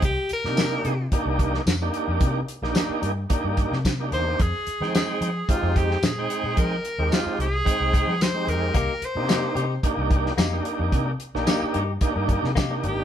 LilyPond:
<<
  \new Staff \with { instrumentName = "Tenor saxophone" } { \time 4/4 \key c \minor \tempo 4 = 110 g'8 bes'4. r2 | r2. r8 c''8 | aes'4 aes'4 f'8 g'8 aes'4 | bes'4 f'8 aes'4. c''8 bes'8~ |
bes'8 c''4. r2 | r2. r8 g'8 | }
  \new Staff \with { instrumentName = "Clean electric guitar" } { \time 4/4 \key c \minor r1 | r1 | r1 | r1 |
<bes ees' g'>8 r8 <bes ees' g'>8 <ees' g'>8 r4 <bes ees' g'>8 r8 | r4 <bes ees' g'>8 <ees' g'>8 r4 <bes ees' g'>8 r8 | }
  \new Staff \with { instrumentName = "Tonewheel organ" } { \time 4/4 \key c \minor r8. <bes d' ees' g'>4 r16 <bes d' ees' g'>4 r16 <bes d' ees' g'>8.~ | <bes d' ees' g'>16 r8 <bes d' ees' g'>4 r16 <bes d' ees' g'>4 r16 <bes d' ees' g'>8. | r8. <aes c' ees' g''>4 r16 <aes c' ees' g'>4 r16 <aes c' ees' g''>8.~ | <aes c' ees' g''>16 r8 <aes c' ees' g'>4 r16 <aes c' ees' g''>4 r16 <aes c' ees' g'>8. |
r8. <bes d' ees' g'>4 r16 <bes d' ees' g'>4 r16 <bes d' ees' g'>8.~ | <bes d' ees' g'>16 r8 <bes d' ees' g'>4 r16 <bes d' ees' g'>4 r16 <bes d' ees' g'>8. | }
  \new Staff \with { instrumentName = "Fingered electric bass" } { \clef bass \time 4/4 \key c \minor c,16 r8 c8. c8 r16 c,8. f,8 r16 f,16 | c8 r16 bes,,16 r8 g,8 r16 g,8 c8. e,8 | f,16 r8 f8. f8 r16 f,8. bes,8 r16 bes,16 | f8 r16 ees,16 r8 c,8 r16 c,8 f8. f,8 |
c,16 r8 c8. c8 r16 c,8. f,8 r16 f,16 | c8 r16 bes,,16 r8 g,8 r16 g,8 c8. aes,,8 | }
  \new DrumStaff \with { instrumentName = "Drums" } \drummode { \time 4/4 <hh bd>8 hh16 sn16 <hh sn tamb>8 hh8 <hh bd>8 <hh bd>16 sn16 <hh sn tamb>8 hh8 | <hh bd>8 hh16 sn16 <hh sn tamb>8 hh8 <hh bd>8 <hh bd>16 sn16 <hh bd sn tamb>8 hh8 | <hh bd>8 hh16 sn16 <hh sn tamb>8 hh8 <hh bd>8 <hh bd>16 sn16 <hh sn tamb>8 hh8 | <hh bd>8 hh8 <hh sn tamb>8 hh8 <hh bd>8 <hh bd>8 <hh sn tamb>8 hh8 |
<hh bd>8 hh8 <hh sn tamb>8 hh8 <hh bd>8 <hh bd>16 sn16 <hh sn tamb>8 hh8 | <hh bd>8 hh16 sn16 <hh sn tamb>8 hh8 <hh bd>8 <hh bd>16 sn16 <hh bd sn tamb>8 hh8 | }
>>